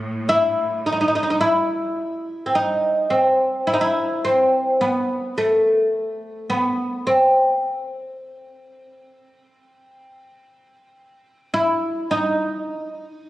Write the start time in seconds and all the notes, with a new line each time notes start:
Already playing: A2 A3
0.29 E4
0.86 D#4
0.92 D#4
1.01 D#4
1.08 D#4
1.15 D#4
1.23 D#4
1.30 D#4
1.41 E4
2.46 C4
2.55 D#4
3.10 C4
3.67 E4
3.74 D#4
3.81 E4
4.25 C4
4.81 B3
5.38 A3
6.50 B3
7.07 C4
11.54 E4
12.11 D#4